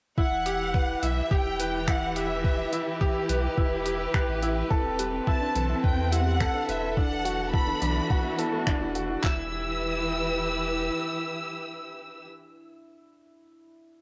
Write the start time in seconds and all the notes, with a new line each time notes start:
0.17 E1 E3 E4 F#5, kick
0.39 E4
0.46 G4, closed hi-hat
0.74 B4, kick
1.02 B1 E4 E5, closed hi-hat
1.31 E1 G4 G5, kick
1.53 G4
1.59 B4, closed hi-hat
1.88 E4 F#5, finger snap, kick
2.16 G4 B4 E5, closed hi-hat
2.44 B4, kick
2.73 E4, closed hi-hat
3.01 G4, kick
3.29 B1 B4, closed hi-hat
3.57 E1 E4, kick
3.86 G4, closed hi-hat
4.14 B4, finger snap, kick
4.28 A1
4.42 E4, closed hi-hat
4.70 E1 C4 E4 A4, kick
4.99 G4 B4, closed hi-hat
5.27 E4 A5, kick
5.41 D4
5.55 B1 E3 A4, closed hi-hat
5.61 A4
5.69 E5
5.84 E2 B4 G5, kick
6.12 E4 G4 F#5, closed hi-hat
6.26 G4
6.40 A4, finger snap, kick
6.54 D4
6.68 E1 B4 E5, closed hi-hat
6.97 E3 D4 E4 F#5, kick
7.25 F#4, closed hi-hat
7.38 F#4
7.46 B3
7.53 E4 A4 B5, kick
7.67 D4
7.82 B1 E3 D4, closed hi-hat
7.96 E5
8.10 F#4, kick
8.38 E4 A4, closed hi-hat
8.53 A4
8.67 E1 D4 E4, finger snap, kick
8.81 E4
8.95 F#4, closed hi-hat
9.10 E4
9.23 E1 E3 E4 E6, kick, clap
9.32 E4
9.40 G4
9.49 B4